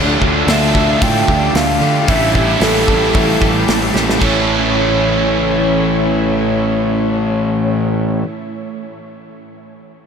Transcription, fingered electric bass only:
Already playing: D2
0.21 D2
0.47 D2
1.02 A2
1.28 D2
1.54 D2
1.81 D3
2.08 A1
2.61 A1
2.88 A1
3.15 A1
3.42 A1
3.69 A1
3.95 A1
4.21 A1

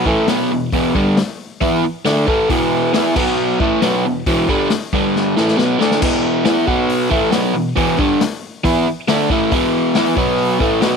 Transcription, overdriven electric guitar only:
0.06 A2 E3 A3
0.28 B2 F#3 B3
0.51 E2 B2
0.73 E2 B2 E3
0.95 G2 D3 G3
1.61 E3 B3 E4
1.84 muted overdriven electric guitar stroke
2.05 D3 A3 D4
2.27 A2 E3 A3
2.50 E2 B2 E3
2.94 E3 B3 E4
3.16 B2 F#3 B3
3.60 A2 E3 A3
3.81 B2 F#3 B3
4.04 E2 B2
4.27 E2 B2 E3
4.49 G2 D3 G3
4.93 G2 D3 G3
5.37 A2 E3 A3
5.58 B2 F#3 B3
5.79 D3 A3 D4
6.01 E2 B2 E3
6.46 E3 B3 E4
6.67 B2 F#3 B3
7.11 A2 E3 A3
7.32 B2 F#3 B3
7.55 E2 B2
7.76 E2 B2 E3
7.98 G2 D3 G3
8.64 E3 B3 E4
8.87 muted overdriven electric guitar stroke
9.08 D3 A3 D4
9.30 A2 E3 A3
9.52 E2 B2 E3
9.96 E3 B3 E4
10.16 B2 F#3 B3
10.60 A2 E3 A3
10.81 B2 F#3 B3

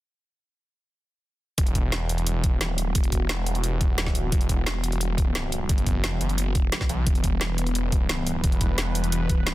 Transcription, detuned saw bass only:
1.58 E1
2.54 D#1
2.81 D1
2.95 E1
3.91 D#1
4.18 D1
4.32 E1
5.69 F#1
6.21 F#1
6.55 E1
6.89 B1
7.07 E1
8.44 E1

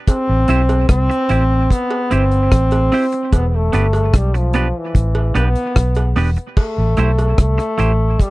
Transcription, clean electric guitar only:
0.48 C4 E4 G4 C5
1.10 muted clean electric guitar stroke
1.29 C4 E4 G4 C5
2.11 C4 E4 G4 C5
2.92 C4 E4 G4 C5
3.13 muted clean electric guitar stroke
3.73 B3 D4 G4 B4
4.34 muted clean electric guitar stroke
4.54 B3 D4 G4 B4
5.35 B3 D4 G4 B4
6.16 B3 D4 G4 B4
6.37 muted clean electric guitar stroke
6.97 A3 E4 G4 C5
7.58 muted clean electric guitar stroke
7.78 A3 E4 G4 C5

